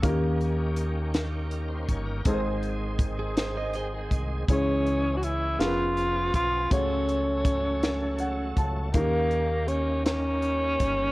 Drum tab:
HH |xxxxxx|xxxxxx|xxxxxx|xxxxxx|
SD |---o--|---o--|---o--|---o--|
BD |o----o|o-o--o|o----o|o-o--o|

HH |xxxxxx|
SD |---o--|
BD |o----o|